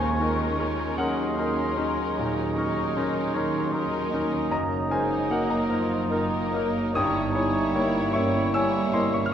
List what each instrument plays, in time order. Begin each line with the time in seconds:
Already playing: grand piano D#2 C5 G#5, double bass section D#2, cello section D#2, bassoon F3, french horn section G#3, viola section C#4, violin section D#4 A#4, clarinet F4, oboe C#5, flute C#6
0.19 bassoon D#3, viola section C#4, violin section D#4 A#4, grand piano D#4 A#4
0.58 bassoon G#3, grand piano C#4 D#4 A#4
0.97 double bass section D#2, cello section D#2, french horn section F#3, grand piano C#4 D#4 A#4 F#5, clarinet D#4, oboe D#5, flute C6
1.37 viola section C#4, clarinet C#4, violin section D#4 A#4, grand piano D#4 A#4
1.77 grand piano C#4 D#4 A#4, clarinet D#4
2.16 double bass section D#2, cello section D#2, grand piano A#2, oboe D#5, flute A#5
2.55 viola section C#4, violin section D#4 A#4, grand piano D#4 A#4, flute C#6
2.96 grand piano C#4 D#4 A#4, flute C6
3.34 double bass section D#2, cello section D#2, grand piano C#4 D#4 A#4, oboe C#5
3.72 viola section C#4, grand piano D#4 A#4, violin section A#4, oboe D#5
3.76 violin section D#4
4.10 grand piano C#4 D#4 A#4, oboe D#5
4.50 double bass section F#1, grand piano F#2 D#5 A#5, cello section F#2, bassoon F#3, french horn section A#3, flute A#5
4.90 french horn section G#3, viola section A#3, grand piano D#4 A#4 C5 G#5, violin section D#4 A#4
5.30 french horn section F#3, grand piano A#3 D#4 A#4 F#5
5.50 french horn section A#3, grand piano D#5 A#5
5.69 double bass section F#1, cello section F#2, bassoon F3, grand piano A#3 D#4 A#4, clarinet F4
6.10 bassoon D#3, viola section A#3, grand piano D#4 A#4, violin section D#4 A#4
6.52 bassoon F#3, grand piano A#3 D#4 A#4
6.93 double bass section G1, cello section G2, grand piano G2 G5 D#6, bassoon G3, viola section A#3, french horn section D#4, clarinet E4, violin section E4 C#5, oboe C#5, flute A#5
7.33 viola section A#3, grand piano E4 C#5, violin section E4 C#5, flute G#5
7.74 grand piano A#3 E4 C#5, flute G5
8.13 double bass section G1, cello section G2, grand piano A#3 E4 C#5 E5 C#6, french horn section C#4
8.53 viola section A#3, french horn section E4, grand piano E4 C#5 G#5 E6, violin section E4 C#5
8.93 grand piano A#3 E4 C#5 D#5 C6, french horn section C4
9.12 french horn section C#4, grand piano E5 C#6
9.26 grand piano F6